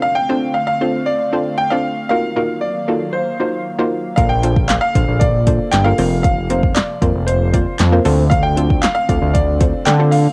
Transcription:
Already playing: analog synth pad D3 A3 C4 F5, synth pluck C4 D4 F4 A4 C5
0.02 grand piano F5
0.15 grand piano G5
0.29 synth pluck C4 D4 F4 A4 C5
0.54 grand piano F5
0.67 grand piano F5
0.81 synth pluck C4 D4 F4 A4 C5
1.06 grand piano D5
1.33 synth pluck C4 D4 F4 A4 C5
1.58 grand piano G5
1.70 synth pluck C4 D4 F4 A4 D5, grand piano F5
2.09 analog synth pad D#3 F#3 A#3, synth pluck A#3 D#4 F4 F#4 A#4, grand piano F5
2.36 synth pluck A#3 D#4 F4 F#4 A#4
2.61 grand piano D5
2.88 synth pluck A#3 D#4 F4 F#4 A4
3.13 grand piano C5
3.40 synth pluck A#3 D#4 F4 F#4 C5
3.79 synth pluck A#3 D#4 F4 F#4 C5
4.16 analog synth bass A#1, analog synth pad D3 A4, synth pluck A#3 D4 F4 A4 A#4, grand piano F5, kick, closed hi-hat
4.29 grand piano G5
4.43 synth pluck A#3 D4 F4 A4 C5, closed hi-hat
4.56 kick
4.68 grand piano F5, snare, clap, closed hi-hat
4.81 grand piano F5
4.95 analog synth bass A#1, synth pluck A#3 D4 F4 A4 C5, kick, closed hi-hat
5.08 analog synth bass A#1
5.20 grand piano D5, kick, closed hi-hat
5.47 synth pluck A#3 D4 F4 A4 C5, kick, closed hi-hat
5.71 analog synth bass G1, grand piano G5, snare, clap, closed hi-hat
5.84 synth pluck A#3 D4 F4 A4 A#4, grand piano F5
5.98 analog synth bass F1, analog synth pad C3 F3, synth pluck A#3 C4 F4 A#4 C5, open hi-hat
6.23 grand piano F5, kick, closed hi-hat
6.50 synth pluck A#3 C4 F4 A#4 C5, closed hi-hat
6.63 kick
6.75 grand piano D5, snare, clap, closed hi-hat
7.02 analog synth bass F1, synth pluck A#3 C4 F4 A#4 C5, kick, closed hi-hat
7.15 analog synth bass F1
7.27 grand piano C5, closed hi-hat
7.53 synth pluck A#3 C4 F4 A#4 D5, kick, closed hi-hat
7.79 analog synth bass F2, snare, clap, closed hi-hat
7.92 synth pluck A#3 C4 F4 A#4 C5
8.05 analog synth bass D2, analog synth pad D3 A3 C4, synth pluck C4 D4 F4 A4 C5, open hi-hat
8.30 grand piano F5, kick, closed hi-hat
8.43 grand piano G5
8.57 synth pluck C4 D4 F4 A4 C5, closed hi-hat
8.70 kick
8.82 grand piano F5, snare, clap, closed hi-hat
8.95 grand piano F5
9.09 analog synth bass D2, synth pluck C4 D4 F4 A4 D5, kick, closed hi-hat
9.22 analog synth bass D2
9.34 grand piano D5, kick, closed hi-hat
9.60 synth pluck C4 D4 F4 A4 C5, kick, closed hi-hat
9.86 analog synth bass D3, grand piano G5, snare, clap, closed hi-hat
9.99 synth pluck C4 D4 F4 A4 C5
10.11 grand piano F5, open hi-hat

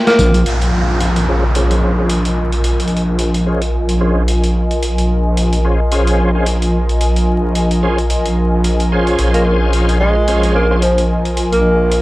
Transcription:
Already playing: analog synth pad F4 A#4 F5 G5
0.07 tenor saxophone A#3, snare, closed hi-hat, tambourine
0.19 wobble bass A#1, tambourine
0.34 closed hi-hat, tambourine
0.45 wobble bass A#1, analog synth pad F4, closed hi-hat, downlifter
0.62 closed hi-hat
0.70 analog synth pad A#4
0.95 analog synth pad D#5
1.00 closed hi-hat
1.16 closed hi-hat
1.28 tonewheel organ C#4 F4 G#4 C5, analog synth pad G#5
1.55 tonewheel organ C#4 F4 G#4 C5, closed hi-hat
1.71 closed hi-hat
1.98 tonewheel organ C#4 F4 G#4 C5
2.10 closed hi-hat
2.25 closed hi-hat
2.52 closed hi-hat
2.64 closed hi-hat
2.80 closed hi-hat
2.88 closed hi-hat
2.97 closed hi-hat
3.19 closed hi-hat
3.34 closed hi-hat
3.46 tonewheel organ C#4 F4 G#4 C5
3.62 closed hi-hat
3.89 closed hi-hat
4.01 tonewheel organ C#4 F4 G#4 C5
4.28 closed hi-hat
4.44 closed hi-hat
4.71 closed hi-hat
4.83 closed hi-hat
4.98 closed hi-hat
5.37 closed hi-hat
5.53 closed hi-hat
5.65 tonewheel organ C#4 F4 G#4 C5
5.92 tonewheel organ C#4 F4 G#4 C5, closed hi-hat
6.07 closed hi-hat
6.35 tonewheel organ C#4 F4 G#4 C5
6.46 closed hi-hat
6.62 closed hi-hat
6.89 closed hi-hat
7.01 closed hi-hat
7.16 closed hi-hat
7.55 closed hi-hat
7.71 closed hi-hat
7.83 tonewheel organ C#4 F4 G#4 C5
7.98 closed hi-hat
8.10 closed hi-hat
8.26 closed hi-hat
8.64 closed hi-hat
8.80 closed hi-hat
8.92 tonewheel organ C#4 F4 G#4 C5
9.07 closed hi-hat
9.19 wobble bass A#1, closed hi-hat
9.34 tenor saxophone A#3, closed hi-hat
9.46 tenor saxophone A#3
9.73 closed hi-hat
9.89 closed hi-hat
10.00 tenor saxophone G#3, tonewheel organ C#4 F4 G#4 C5
10.28 tonewheel organ C#4 F4 G#4 C5, closed hi-hat
10.43 closed hi-hat
10.55 tenor saxophone A#3
10.71 tonewheel organ C#4 F4 G#4 C5
10.82 tenor saxophone F3, closed hi-hat
10.98 closed hi-hat
11.25 closed hi-hat
11.37 closed hi-hat
11.52 tenor saxophone A#3, closed hi-hat
11.92 closed hi-hat

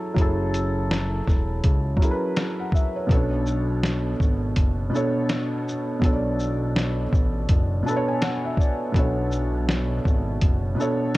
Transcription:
Already playing: felt piano F#3 C#4 E4 G#4 A4
0.14 analog synth bass F#1, felt piano F#3 C#4 E4, kick, closed hi-hat
0.20 felt piano G#4 A4
0.54 closed hi-hat, shaker
0.91 snare, closed hi-hat
1.27 analog synth bass E1, kick, snare, shaker
1.64 analog synth bass C#2, kick, closed hi-hat
1.97 felt piano F#3 C#4 E4, kick
2.02 felt piano G#4 A#4, closed hi-hat, shaker
2.11 felt piano B4
2.37 snare, closed hi-hat
2.60 felt piano F#5
2.72 felt piano E5, kick, shaker
2.96 felt piano C#5
3.07 analog synth bass B1, felt piano B2 B3 C#4, kick
3.11 felt piano A4 C#5, closed hi-hat
3.17 felt piano D4
3.46 shaker
3.83 snare, closed hi-hat
4.20 analog synth bass G#1, kick, shaker
4.56 analog synth bass F#1, kick, closed hi-hat
4.90 felt piano B2 B3 D4
4.95 felt piano A4 C#5, shaker
5.29 snare, closed hi-hat
5.68 shaker
5.99 analog synth bass B1, felt piano B2 B3 D4, kick
6.04 felt piano A4 C#5, closed hi-hat
6.13 felt piano D5
6.39 shaker
6.76 snare, closed hi-hat
7.13 analog synth bass A1, kick, shaker
7.49 analog synth bass F#1, kick, closed hi-hat
7.83 felt piano B2 B3 D4 A5
7.87 felt piano A4 B4, shaker
7.96 felt piano C#5
8.08 felt piano G#5
8.22 felt piano F#5, snare, closed hi-hat
8.45 felt piano E5
8.57 felt piano D5, kick, shaker
8.92 analog synth bass B1, felt piano B2 B3 D4, kick, closed hi-hat
8.97 felt piano A4 C#5
9.32 shaker
9.69 snare, closed hi-hat
10.05 analog synth bass G#1, kick, shaker
10.41 analog synth bass F#1, kick, closed hi-hat
10.75 felt piano B2 B3 D4
10.80 felt piano A4 C#5, shaker

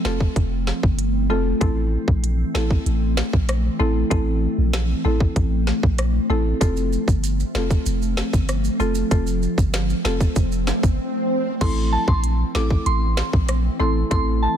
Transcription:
Already playing: ambient pad F3 A3 C4
0.05 sub bass F1, marimba A3 C4 F4 A4, snare
0.20 kick
0.36 sub bass F1, kick, closed hi-hat
0.67 snare
0.83 sub bass G1, kick
0.99 closed hi-hat
1.30 sub bass F1, marimba A3 C4 F4 A4
1.61 sub bass A1, ambient pad E3 A3 C4, marimba A3 C4 E4 A4, kick, closed hi-hat
2.08 sub bass A#1, kick
2.24 closed hi-hat
2.55 sub bass A1, marimba A3 C4 E4 A4, snare
2.71 kick
2.86 sub bass A1, closed hi-hat
3.17 snare
3.33 sub bass A#1, kick
3.49 cross-stick, closed hi-hat
3.79 sub bass A1, marimba A3 C4 E4 A4
4.11 sub bass A1, marimba A3 C4 E4 A4, kick, closed hi-hat
4.58 sub bass A#1
4.73 snare, closed hi-hat
5.05 sub bass A1, marimba A3 C4 E4 A4
5.20 kick
5.36 sub bass A1, kick, closed hi-hat
5.67 snare
5.83 sub bass A#1, kick
5.98 cross-stick, closed hi-hat
6.30 sub bass A1, marimba A3 C4 E4 A4
6.61 sub bass F1, ambient pad F3, marimba A3 C4 F4 A4, kick, closed hi-hat, maracas
6.77 maracas
6.93 maracas
7.08 sub bass G1, kick, maracas
7.24 closed hi-hat, maracas
7.40 maracas
7.55 sub bass F1, marimba A3 C4 F4 A4, snare, maracas
7.71 kick, maracas
7.86 sub bass F1, closed hi-hat, maracas
8.02 maracas
8.17 snare, maracas
8.33 sub bass G1, kick, maracas
8.49 cross-stick, closed hi-hat, maracas
8.64 maracas
8.80 sub bass F1, marimba A3 C4 F4 A4, maracas
8.95 maracas
9.11 sub bass F1, marimba A3 C4 F4 A4, kick, closed hi-hat, swell, maracas
9.27 maracas
9.43 maracas
9.58 sub bass G1, kick, maracas
9.74 snare, closed hi-hat, maracas
9.90 maracas
10.05 sub bass F1, marimba A3 C4 F4 A4, snare, maracas
10.21 kick, maracas
10.36 sub bass F1, kick, closed hi-hat, maracas
10.52 maracas
10.67 snare, high timbale, maracas
10.83 sub bass G1, kick, maracas
11.61 sub bass A1, ambient pad E3 A3 C4, marimba A3 C4 E4 A4, synth bell C6, kick, closed hi-hat, crash
11.92 synth bell A5
12.08 sub bass A#1, synth bell C6, kick
12.24 closed hi-hat
12.55 sub bass A1, marimba A3 C4 E4 A4, synth bell D6, snare
12.71 kick
12.86 sub bass A1, synth bell C6, closed hi-hat
13.17 snare
13.33 sub bass A#1, kick
13.49 cross-stick, closed hi-hat
13.80 sub bass A1, marimba A3 C4 E4 A4, synth bell C6
14.11 sub bass A1, marimba A3 C4 E4 A4, synth bell C6, kick, closed hi-hat
14.42 synth bell A5

